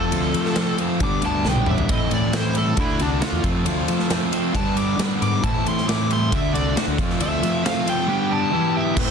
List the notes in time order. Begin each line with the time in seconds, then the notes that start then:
Already playing: F2 F3 A3 C4 F4 A4
0.11 D2 F3 A3 C4 F4, ride
0.34 F3 A3, ride
0.45 snare
0.56 F3 A3 C4 F4, snare, ride
0.78 A3 C4 F4, ride
1.00 G2 D3 G3 B3 D4 D6, kick, ride
1.22 D2 G3 B3 D4 G4 A5, ride
1.45 B1 D3 G3 B3 D4 B4, snare
1.49 G5
1.55 high tom
1.66 A1 G4 E5, mid tom
1.78 floor tom
1.89 A2 E3 A3 C4 E4 D#5, kick, ride
2.11 A2 E3 D5, ride
2.33 A2 E3 A3 C4 E4 C5, snare, ride
2.55 G3 A3 C4 E4 A4, ride
2.76 D2 D3 A3 D4 E4 F#4, kick, ride
2.99 C2 A3 D4 F#4, ride
3.21 D3 A3 D4 F4 F#4, snare, ride
3.32 E2
3.43 F2 F3 A3 C4 F4, kick, ride
3.65 D2 F3 A3 C4 F4, ride
3.88 F3 A3, ride
3.99 snare
4.09 F3 A3 C4 F4, snare, ride
4.31 A3 C4 F4, ride
4.54 G2 D3 G3 B3 D4 A5, kick, ride
4.76 G3 B3 D4 G4 D6, ride
4.98 D3 G3 B3 D4 B4, snare, ride
5.21 G#2 G4 D6, ride
5.43 A2 E3 A3 C4 E4 A5, kick, ride
5.65 A2 E3 C6, ride
5.78 snare
5.88 A2 E3 A3 C4 E4 D6, snare, ride
6.09 G3 A3 C4 E4 C6, ride
6.31 D2 D3 A3 D4 F#4 E5, kick, ride
6.53 C2 A3 D4 F#4 D5, ride
6.77 D3 A3 D4 F#4, snare, ride
6.87 D2
6.98 F2 F3 A3 C4 F4, kick, ride
7.10 snare
7.20 D2 F3 A3 C4 F4 E5, ride
7.42 F3 A3, ride
7.64 F3 A3 C4 F4 F5, snare, ride
7.86 A3 C4 F4 G5, ride
8.08 G3 B3 D4 G4
8.30 B3 D4 G4 A5
8.51 E3 B3 E4 G4
8.76 G4 E5
8.97 A2 E3 A3 C4 E4 A4 C5, kick, crash